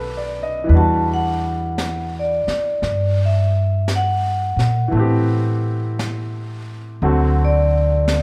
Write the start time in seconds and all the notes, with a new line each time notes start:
Already playing: B1 D#3 A3 B3 D4 G4 A4 B4
0.17 D5
0.43 D#5
0.64 E3 G3
0.69 E2 D4 B4, brush sweep
0.75 F#4 A5
1.14 F#5
1.78 brush sweep, snare, hi-hat pedal
2.19 D5
2.47 muted upright bass stroke, snare
2.82 G2, brush sweep, snare
3.25 E5
3.88 brush sweep, snare, hi-hat pedal
3.96 F#5
4.56 A#2, snare
4.88 E3 A3
4.92 A2 B3, brush sweep
4.97 C4 G4
5.99 brush sweep, snare, hi-hat pedal
7.02 D2 D3 F#3 A3 C4 F#4, brush sweep
7.45 D5
8.08 brush sweep, snare, hi-hat pedal